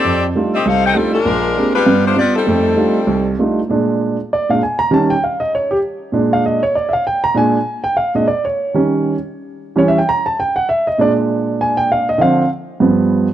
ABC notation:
X:1
M:4/4
L:1/8
Q:"Swing" 1/4=198
K:Bb
V:1 name="Saxophone section"
[CGAd] z2 [CGAe] [EAcf] [EAcg] [G,CEA] [_A,DFB]- | [_A,DFB]3 [G,DF_c]2 [=A,DF=c] [=B,FGd] [G,CEA]- | [G,CEA]6 z2 | z8 |
z8 | z8 | z8 | z8 |
z8 | z8 | z8 |]
V:2 name="Grand piano"
z8 | z8 | z8 | z4 d f _a b |
a g f e _d G z2 | z f e _d =d [=ef] g b | _a3 g f e d _d- | _d4 z4 |
(3^c =e g b a g _g e _e | d z3 _a g f e | f2 z6 |]
V:3 name="Grand piano"
F,,2 [G,A,DEF] z C,,2 [G,A,DEF] z | B,,,2 [_A,B,CDG] z [G,,=B,]2 [G,B,F] z | [F,,A,]2 [G,A,DEF] z C,,2 [G,A,DEF] z | [B,,_A,D]3 z2 [B,,A,D] z2 |
[E,G,_D] z6 z | [B,,_A,D]3 z4 z | [B,,_A,D] z4 [B,,A,D] z2 | z [E,G,_D]3 z4 |
[=E,G,^C] z6 z | [B,,_A,D]8 | [D,F,C] z3 [G,,F,=B,]3 z |]